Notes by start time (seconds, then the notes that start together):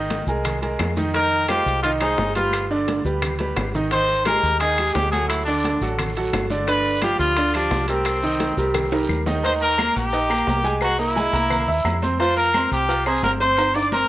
Already playing: G#1 D#3 D#4 D#5
0.10 high bongo, high conga, high timbale, low timbale, maracas
0.27 C2 G#3 G#4 A#4, high conga, maracas
0.44 high bongo, high conga, low conga, high timbale, claves, maracas
0.62 G#3 G#4 A#4, high bongo, high conga, high timbale, maracas
0.79 F2, high bongo, low bongo, high conga, high timbale, low timbale, claves, maracas
0.97 D#3 D#4 D#5, high bongo, high conga, maracas
1.14 D#3 D#4 A#4 D#5, high bongo, high conga, high timbale, maracas
1.32 high bongo, high conga, maracas
1.48 G#3 F4 G4 C5, high bongo, high conga, high timbale, low timbale, claves, maracas
1.66 C2, high bongo, high conga, maracas
1.82 D#3 D#4 F4 D#5, high bongo, high conga, high timbale, maracas
2.00 G#3 D#4 G#4 C5, high conga, high timbale, claves, maracas
2.18 G1, high bongo, low bongo, high conga, low timbale, maracas
2.35 G3 F4 G4 B4, high bongo, high conga, high timbale, maracas
2.53 high bongo, high conga, high timbale, claves, maracas
2.70 D3 D4 D5, high bongo, high conga, maracas
2.88 high bongo, high conga, high timbale, low timbale, maracas
3.04 D2 G3 G4 B4, high conga, maracas
3.22 high bongo, high conga, low conga, high timbale, claves, maracas
3.39 G3 G4 B4, high bongo, high conga, high timbale, maracas
3.56 G#1, high bongo, low bongo, low conga, high timbale, low timbale, claves, maracas
3.74 D#3 D#4 D#5, high bongo, low conga, maracas
3.91 D#3 D#4 C5 D#5, high bongo, high conga, high timbale, long guiro, maracas
4.08 high bongo, high conga, maracas
4.25 G#3 G4 G#4 A#4, high bongo, high conga, high timbale, low timbale, short guiro, claves, maracas
4.43 D#2, high bongo, high conga, short guiro, maracas
4.60 D#3 D#4 G#4 D#5, high bongo, high conga, high timbale, long guiro, maracas
4.78 G#3 G4 G#4, high conga, high timbale, claves, maracas
4.93 D2 G4, high bongo, low bongo, high conga, low timbale, short guiro, maracas
5.12 F#3 F#4 G#4 A4, high bongo, high conga, high timbale, short guiro, maracas
5.28 E4, high bongo, high conga, high timbale, long guiro, claves, maracas
5.45 D3 D4 D5, high bongo, high conga, maracas
5.64 high bongo, high conga, high timbale, low timbale, short guiro, maracas
5.81 A1 F#3 F#4 A4, high conga, short guiro, maracas
5.99 high bongo, high conga, low conga, high timbale, long guiro, claves, maracas
6.16 F#3 F#4 A4, high bongo, high conga, high timbale, maracas
6.33 G1, high bongo, low bongo, high conga, high timbale, low timbale, short guiro, claves, maracas
6.50 D3 D4 D5, high bongo, high conga, short guiro, maracas
6.67 D3 D4 B4 D5, high bongo, high conga, high timbale, long guiro, maracas
6.85 high bongo, high conga, maracas
7.02 F3 F4 G4, high bongo, high conga, high timbale, low timbale, short guiro, claves, maracas
7.19 D2 F4, high bongo, high conga, short guiro, maracas
7.37 D3 D4 D5, high bongo, high conga, high timbale, long guiro, maracas
7.54 F3 D4 F4 G4, high conga, high timbale, claves, maracas
7.71 C2, high bongo, low bongo, high conga, low timbale, short guiro, maracas
7.88 G3 C4 G4 A#4, high bongo, high timbale, short guiro, maracas
8.05 high bongo, high conga, high timbale, long guiro, claves, maracas
8.23 D#3 D#4 D#5, high bongo, high conga, maracas
8.40 high bongo, high conga, high timbale, low timbale, short guiro, maracas
8.57 C2 G3 G4 A#4, high conga, short guiro, maracas
8.74 high bongo, high conga, low conga, high timbale, long guiro, claves, maracas
8.92 G3 G4 A#4, high bongo, high conga, high timbale, maracas
9.09 D#2, low bongo, high conga, short guiro, claves, maracas
9.26 D#3 D#4 D#5, low bongo, high conga, low timbale, short guiro, maracas
9.43 D#3 D#4 C5 D#5, cowbell, high conga, low agogo, long guiro, maracas
9.61 A#4, high conga, low agogo, maracas
9.78 A#3 A#4 A#5, cowbell, high conga, low timbale, low agogo, short guiro, claves, maracas
9.96 A#1 G4, cowbell, high conga, short guiro, maracas
10.13 D#4 D#5 D#6, cowbell, high conga, low agogo, long guiro, maracas
10.30 A#3 A#4 A#5, high conga, low agogo, claves, maracas
10.47 C2, cowbell, high conga, low timbale, low agogo, short guiro, maracas
10.64 G#3 G#4 G#5, cowbell, short guiro, maracas
10.81 F#4, cowbell, high conga, low agogo, long guiro, claves, maracas
10.99 A#3 E4 A#4 A#5, high conga, maracas
11.16 G#3 G#4 G#5, cowbell, high conga, low timbale, low agogo, short guiro, maracas
11.33 C2 A#3 A#4 A#5, cowbell, high conga, low agogo, short guiro, maracas
11.50 cowbell, high conga, low conga, low agogo, long guiro, claves, maracas
11.68 D#2 E4 E5 E6, high conga, maracas
11.84 F2, cowbell, high conga, low timbale, low agogo, short guiro, claves, maracas
12.02 C4 C5 C6, cowbell, high conga, short guiro, maracas
12.19 F3 F4 C5 F5, cowbell, high conga, low agogo, long guiro, maracas
12.37 A#4, high conga, low agogo, maracas
12.54 C4 C5 C6, cowbell, high conga, low timbale, low agogo, short guiro, claves, maracas
12.71 C2 G4, cowbell, high conga, short guiro, maracas
12.89 F4 F5 F6, cowbell, high conga, low agogo, long guiro, maracas
13.06 C4 G#4 C5 C6, high conga, low agogo, claves, maracas
13.23 G1 A#4, cowbell, high conga, low timbale, low agogo, short guiro, maracas
13.40 C4 C5 C6, cowbell, short guiro, maracas
13.57 cowbell, high conga, high timbale, low agogo, long guiro, claves, maracas
13.75 D4 D5 D6, high conga, high timbale, maracas
13.92 C4 A#4 C5 C6, cowbell, high conga, low agogo, short guiro, maracas